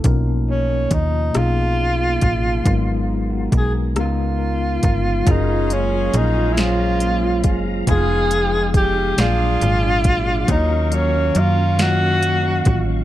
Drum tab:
HH |x-xx-x|x-xx-x|xxxxxx|xxxxxx|
SD |---r--|---r--|---o--|---o--|
BD |o-o--o|o-o--o|o----o|o-o--o|

HH |xxxxxx|
SD |---o--|
BD |o----o|